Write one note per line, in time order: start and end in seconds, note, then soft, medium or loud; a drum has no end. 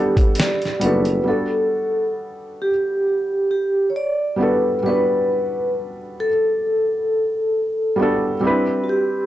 0.00 0.63 G3 medium
0.00 0.63 B3 medium
0.00 0.64 D4 medium
0.00 0.79 G4 medium
0.00 0.66 A4 medium
0.00 0.65 F#5 medium
0.17 kick medium
0.17 closed hi-hat medium
0.35 0.79 D5 medium
0.35 closed hi-hat medium
0.40 snare loud
0.62 snare soft
0.62 closed hi-hat soft
0.80 1.21 F#1 medium
0.80 1.17 G3 medium
0.80 1.18 B3 medium
0.80 1.19 D4 medium
0.80 1.28 B4 medium
0.80 closed hi-hat medium
0.85 1.19 F#4 medium
0.85 1.20 A4 medium
1.05 closed hi-hat soft
1.24 2.67 G3 medium
1.24 2.68 B3 medium
1.24 2.69 D4 medium
1.28 2.70 F#4 medium
1.28 2.12 A4 medium
1.28 2.70 A4 medium
2.62 3.50 G4 medium
3.51 3.86 G4 medium
3.90 3.95 C#5 medium
3.96 4.41 D5 medium
4.36 4.74 G3 medium
4.36 4.75 B3 medium
4.36 4.76 D4 medium
4.41 4.77 F#4 medium
4.41 4.78 A4 medium
4.41 4.85 B4 medium
4.83 6.26 G3 medium
4.83 6.27 B3 medium
4.83 6.28 D4 medium
4.83 5.71 B4 medium
4.87 6.28 F#4 medium
4.87 6.29 B4 medium
6.20 7.94 A4 medium
7.96 8.33 G3 medium
7.96 8.34 B3 medium
7.96 8.35 D4 medium
8.01 8.36 F#4 medium
8.01 8.37 A4 medium
8.40 9.26 G3 medium
8.40 9.26 C4 medium
8.40 9.26 D4 medium
8.45 9.26 E4 medium
8.45 9.26 B4 medium
8.84 8.88 F#4 medium
8.89 9.26 G4 medium